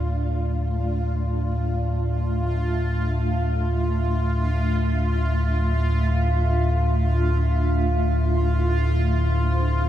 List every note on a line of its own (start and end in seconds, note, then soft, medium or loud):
0.00 9.89 D2 medium
0.00 9.89 A2 medium
0.00 9.89 A3 medium
0.00 9.89 D4 medium
0.00 9.89 F4 medium
0.00 1.91 D5 medium
1.60 9.89 E5 medium
8.71 9.89 C5 medium
9.01 9.89 C4 medium